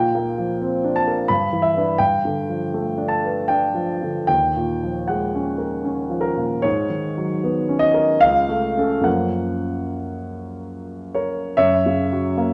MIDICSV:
0, 0, Header, 1, 2, 480
1, 0, Start_track
1, 0, Tempo, 700935
1, 1367, Time_signature, 3, 2, 24, 8
1, 1367, Tempo, 745342
1, 2327, Tempo, 790514
1, 5207, Tempo, 831025
1, 7127, Tempo, 782269
1, 7728, End_track
2, 0, Start_track
2, 0, Title_t, "Grand piano"
2, 0, Program_c, 0, 0
2, 0, Note_on_c, 0, 46, 45
2, 0, Note_on_c, 0, 79, 68
2, 33, Control_c, 0, 64, 127
2, 102, Note_on_c, 0, 58, 33
2, 261, Note_on_c, 0, 53, 30
2, 352, Note_off_c, 0, 58, 0
2, 422, Note_on_c, 0, 60, 34
2, 512, Note_off_c, 0, 53, 0
2, 578, Note_on_c, 0, 62, 34
2, 648, Note_off_c, 0, 79, 0
2, 655, Note_on_c, 0, 81, 65
2, 672, Note_off_c, 0, 60, 0
2, 737, Note_on_c, 0, 70, 32
2, 828, Note_off_c, 0, 62, 0
2, 864, Note_off_c, 0, 46, 0
2, 879, Note_on_c, 0, 83, 68
2, 889, Note_on_c, 0, 43, 42
2, 890, Note_off_c, 0, 81, 0
2, 891, Note_off_c, 0, 70, 0
2, 899, Control_c, 0, 64, 0
2, 986, Control_c, 0, 64, 127
2, 1045, Note_on_c, 0, 52, 31
2, 1111, Note_on_c, 0, 76, 60
2, 1119, Note_off_c, 0, 83, 0
2, 1210, Note_on_c, 0, 71, 34
2, 1215, Note_on_c, 0, 62, 29
2, 1302, Note_off_c, 0, 52, 0
2, 1354, Note_off_c, 0, 43, 0
2, 1354, Note_off_c, 0, 71, 0
2, 1357, Note_off_c, 0, 62, 0
2, 1358, Note_on_c, 0, 79, 70
2, 1361, Note_off_c, 0, 76, 0
2, 1368, Note_on_c, 0, 43, 40
2, 1378, Control_c, 0, 64, 0
2, 1476, Control_c, 0, 64, 127
2, 1530, Note_on_c, 0, 50, 30
2, 1687, Note_on_c, 0, 53, 26
2, 1779, Note_off_c, 0, 50, 0
2, 1846, Note_on_c, 0, 57, 31
2, 1937, Note_off_c, 0, 53, 0
2, 1999, Note_on_c, 0, 62, 33
2, 2068, Note_on_c, 0, 81, 56
2, 2075, Note_off_c, 0, 79, 0
2, 2100, Note_off_c, 0, 57, 0
2, 2173, Note_on_c, 0, 71, 29
2, 2260, Note_off_c, 0, 62, 0
2, 2321, Note_off_c, 0, 81, 0
2, 2323, Note_on_c, 0, 79, 59
2, 2333, Note_on_c, 0, 62, 33
2, 2427, Note_off_c, 0, 71, 0
2, 2483, Note_on_c, 0, 53, 30
2, 2585, Note_off_c, 0, 62, 0
2, 2653, Note_on_c, 0, 50, 27
2, 2744, Note_off_c, 0, 53, 0
2, 2787, Note_off_c, 0, 43, 0
2, 2795, Note_off_c, 0, 79, 0
2, 2804, Note_on_c, 0, 79, 68
2, 2809, Note_on_c, 0, 39, 33
2, 2814, Note_off_c, 0, 50, 0
2, 2821, Control_c, 0, 64, 0
2, 2937, Control_c, 0, 64, 127
2, 2982, Note_on_c, 0, 46, 28
2, 3145, Note_on_c, 0, 53, 24
2, 3237, Note_off_c, 0, 46, 0
2, 3292, Note_on_c, 0, 78, 45
2, 3293, Note_off_c, 0, 79, 0
2, 3301, Note_on_c, 0, 56, 31
2, 3394, Note_off_c, 0, 53, 0
2, 3459, Note_on_c, 0, 61, 30
2, 3548, Note_off_c, 0, 56, 0
2, 3599, Note_on_c, 0, 70, 26
2, 3702, Note_off_c, 0, 61, 0
2, 3759, Note_off_c, 0, 78, 0
2, 3760, Note_on_c, 0, 61, 30
2, 3851, Note_off_c, 0, 70, 0
2, 3912, Note_on_c, 0, 53, 29
2, 3979, Note_on_c, 0, 70, 52
2, 4016, Note_off_c, 0, 61, 0
2, 4076, Note_on_c, 0, 46, 28
2, 4177, Note_off_c, 0, 53, 0
2, 4221, Note_off_c, 0, 39, 0
2, 4231, Note_on_c, 0, 73, 62
2, 4236, Note_off_c, 0, 70, 0
2, 4242, Note_on_c, 0, 44, 37
2, 4243, Note_off_c, 0, 46, 0
2, 4259, Control_c, 0, 64, 0
2, 4375, Control_c, 0, 64, 127
2, 4399, Note_on_c, 0, 51, 30
2, 4567, Note_on_c, 0, 54, 29
2, 4660, Note_off_c, 0, 51, 0
2, 4726, Note_on_c, 0, 59, 36
2, 4821, Note_off_c, 0, 54, 0
2, 4878, Note_on_c, 0, 61, 41
2, 4942, Note_on_c, 0, 75, 74
2, 4958, Note_off_c, 0, 73, 0
2, 4980, Note_off_c, 0, 59, 0
2, 5032, Note_on_c, 0, 70, 39
2, 5138, Note_off_c, 0, 61, 0
2, 5180, Note_off_c, 0, 44, 0
2, 5192, Note_on_c, 0, 77, 83
2, 5195, Note_off_c, 0, 75, 0
2, 5200, Note_off_c, 0, 70, 0
2, 5201, Note_on_c, 0, 37, 50
2, 5218, Control_c, 0, 64, 0
2, 5337, Control_c, 0, 64, 127
2, 5357, Note_on_c, 0, 57, 36
2, 5522, Note_on_c, 0, 61, 31
2, 5529, Note_on_c, 0, 69, 34
2, 5615, Note_off_c, 0, 57, 0
2, 5658, Note_on_c, 0, 42, 31
2, 5658, Note_on_c, 0, 53, 24
2, 5661, Note_off_c, 0, 61, 0
2, 5664, Note_on_c, 0, 58, 23
2, 5666, Note_off_c, 0, 37, 0
2, 5670, Note_on_c, 0, 61, 22
2, 5672, Note_off_c, 0, 69, 0
2, 5674, Note_on_c, 0, 78, 54
2, 5676, Note_off_c, 0, 77, 0
2, 5679, Note_on_c, 0, 70, 25
2, 5695, Control_c, 0, 64, 0
2, 5800, Control_c, 0, 64, 127
2, 6880, Note_off_c, 0, 78, 0
2, 6886, Note_off_c, 0, 70, 0
2, 6891, Note_on_c, 0, 73, 49
2, 6895, Note_on_c, 0, 70, 34
2, 7092, Note_off_c, 0, 42, 0
2, 7092, Note_off_c, 0, 53, 0
2, 7095, Note_off_c, 0, 58, 0
2, 7097, Note_off_c, 0, 61, 0
2, 7115, Note_off_c, 0, 70, 0
2, 7130, Note_off_c, 0, 73, 0
2, 7137, Note_on_c, 0, 76, 76
2, 7138, Control_c, 0, 64, 0
2, 7142, Note_on_c, 0, 73, 62
2, 7143, Note_on_c, 0, 42, 47
2, 7244, Control_c, 0, 64, 127
2, 7315, Note_on_c, 0, 49, 36
2, 7478, Note_on_c, 0, 54, 35
2, 7560, Note_off_c, 0, 49, 0
2, 7631, Note_on_c, 0, 58, 39
2, 7717, Note_off_c, 0, 54, 0
2, 7728, Note_off_c, 0, 42, 0
2, 7728, Note_off_c, 0, 58, 0
2, 7728, Note_off_c, 0, 73, 0
2, 7728, Note_off_c, 0, 76, 0
2, 7728, End_track
0, 0, End_of_file